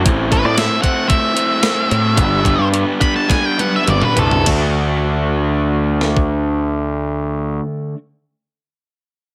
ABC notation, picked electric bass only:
X:1
M:4/4
L:1/16
Q:1/4=98
K:Dmix
V:1 name="Picked electric bass" clef=bass
A,,,3 A,,2 z8 z A,,2 | G,,,3 G,,2 z6 z G,,, z C,,2 | D,,16- | D,,16 |]